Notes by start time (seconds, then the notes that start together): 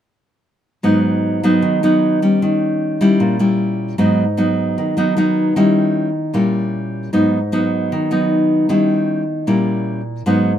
0.83 G#2 F#3 B3 D#4
1.43 F#3 B3 D#4
1.62 D#3
1.83 F#3 B3 D#4
2.22 G3 C#4
2.42 D#3
3.01 G3 C#4 E4
3.20 A#2
3.39 G3 C#4 E4
3.98 G#2 F#3 B3 D#4
4.37 F#3 B3 D#4
4.78 D#3
4.97 F#3 B3 D#4
5.17 F#3 B3 D#4
5.56 D#3 G3 C#4 E4
6.34 A#2 G3 C#4 E4
7.13 G#2 F#3 B3 D#4
7.52 F#3 B3 D#4
7.92 D#3
8.11 F#3 B3 D#4
8.69 D#3 G3 C#4 E4
9.47 A#2 G3 C#4 E4
10.26 G#2 F#3 B3 D#4